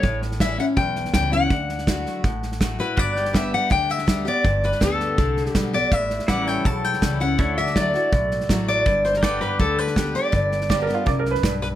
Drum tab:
HH |----p-------p---|----p-------p---|----p-------p---|----p-------p---|
SD |o-ooo-o-o-ooo-o-|o-ooo-o-o-ooo-o-|o-ooo-o-o-ooo-o-|o-ooo-o-o-ooo-o-|
BD |o---o---o---o---|o---o---o---o---|o---o---o---o---|o---o---o---o---|

HH |----p-------p---|----p-------p---|----p-------p---|----p-------p---|
SD |o-ooo-o-o-ooo-o-|o-ooo-o-o-ooo-o-|o-ooo-o-o-ooo-o-|o-ooo-o-o-ooo-o-|
BD |o---o---o---o---|o---o---o---o---|o---o---o---o---|o---o---o---o---|